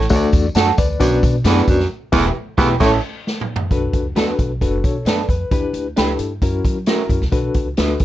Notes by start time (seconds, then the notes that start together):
0.01 snare
0.09 D2 A3 D4 F#4 A4 C#5, kick, closed hi-hat, tambourine
0.16 D5
0.33 E2, kick, closed hi-hat, tambourine
0.55 F#2 D4 F#4 A4 F#5 A5, snare, closed hi-hat, tambourine
0.78 D2 B4 D5, kick, closed hi-hat, tambourine
1.00 B1 F#2 B3 D4 F#4 B4 D5, kick, closed hi-hat, tambourine
1.23 B2, kick, closed hi-hat, tambourine
1.44 E2 F#2 B3 D4 F#4 B4 D5, snare, closed hi-hat, tambourine
1.57 snare
1.68 F2 F#2, kick, closed hi-hat, tambourine
1.80 snare
2.12 E1 E2 B3 E4 G4 B4, kick, snare, crash
2.19 E5
2.58 E1 E2 B3 E4 G4 B4 E5, kick, snare
2.80 A1 A2 C#4 E4 A4 E5, kick, snare, crash
2.86 C#5
3.27 snare
3.41 mid tom
3.56 floor tom
3.71 B1 D4 F#4 A4 B4, kick, closed hi-hat
3.93 C#2, kick, closed hi-hat
4.15 D2 B3 D4 F#4 A4 B4, snare, closed hi-hat
4.39 B1, kick, closed hi-hat
4.61 F#1 D4 F#4 A4 B4, kick, closed hi-hat
4.84 B2 A4 C#5, kick, closed hi-hat
5.05 F#2 B3 D4 A4 B4 D5, snare, closed hi-hat
5.29 F2 B4, kick, closed hi-hat
5.51 E2 D4 E4 G4 B4, kick, closed hi-hat
5.73 D2, closed hi-hat
5.96 C#2 D4 E4 G4 A4 B4, snare, closed hi-hat
6.19 G2, closed hi-hat
6.42 F#2 C#4 E4 F#4 A#4, kick, closed hi-hat
6.65 F#3, kick, closed hi-hat
6.86 C#4 E4 F#4 A#4, snare, closed hi-hat
7.09 F#2, kick, closed hi-hat
7.21 C2, snare
7.32 B1 D4 F#4 A4 B4, kick, closed hi-hat
7.54 C#2, kick, closed hi-hat
7.77 D2 D4 F#4 A4 B4, snare, closed hi-hat
7.99 B1, kick, closed hi-hat